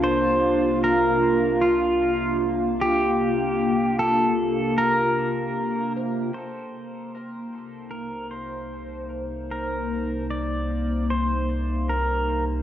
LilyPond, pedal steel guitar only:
\new Staff \with { instrumentName = "Pedal steel guitar" } { \time 4/4 \key c \minor \tempo 4 = 76 c''4 bes'4 f'4 r8 g'8~ | g'4 a'4 bes'4. r8 | c''2 bes'8 c''4 r8 | bes'4 d''4 c''4 bes'8. r16 | }